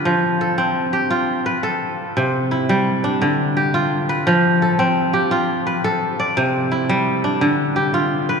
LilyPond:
<<
  \new Staff \with { instrumentName = "Kora" } { \time 12/8 \key f \lydian \tempo 4. = 114 b'8 r8 a'4. g'4. b'4. r8 | r4 e'4. d'4 r8 g'4. b'8~ | b'8 r8 a'4. g'4. b'4. d''8~ | d''8 r8 e'4. d'4 r8 g'4. b'8 | }
  \new Staff \with { instrumentName = "Kora" } { \time 12/8 \key f \lydian f4 r8 c'4 r8 f'4 r8 a'4 r8 | c4 r8 g4 r8 d4 r8 f'4 r8 | f4 r8 c'4 r8 f'4 r8 a'4 r8 | c4 r8 g4 r8 d4 r8 f'4 r8 | }
>>